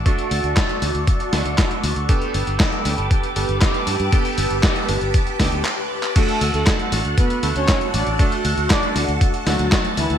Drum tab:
CC |----------------|----------------|----------------|x---------------|
HH |xxoxxxoxxxoxxxox|xxoxxxoxxxoxxxox|xooxxxoxxxox----|xxoxxxoxxxoxxxox|
CP |----x-------x---|----x-------x---|----x-------x--x|----x-------x---|
SD |----o-----o-o---|----o-------o---|----o-----o-----|----o-------o---|
BD |o---o---o---o---|o---o---o---o---|o---o---o-o-----|o---o---o---o---|

CC |----------------|
HH |xxoxxxoxxxoxxxox|
CP |----x-------x---|
SD |----o-----o-o---|
BD |o---o---o---o---|